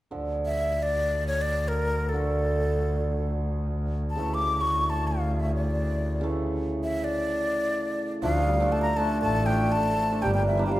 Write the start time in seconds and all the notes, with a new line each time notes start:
0.11 D2 D3 F3
0.46 E5
0.83 D5
1.27 C#5
1.42 D5
1.68 A#4
2.09 A4
2.13 D3 F3 A3
4.10 A5
4.16 D2 C#3 E3 A3
4.34 D6
4.61 C#6
4.90 A5
5.07 F5
5.40 E5
5.55 D5
6.21 C#3 E3 A3
6.84 E5
7.04 D5
8.22 D2 F3 A3 D4 F5
8.47 G3
8.60 F3 A3 D4
8.72 A3 A5
8.82 A#5
8.97 F3 A3 D4 A5
9.21 A1 A3 A5
9.46 F3 A3 D4 G5
9.72 A3 A5
9.98 A3
10.11 A3 D4
10.22 G1 G3 A#3 D4 G5
10.34 G3 G5
10.47 E3 E5
10.57 G3 A#3 D4
10.66 G5
10.72 F3 F5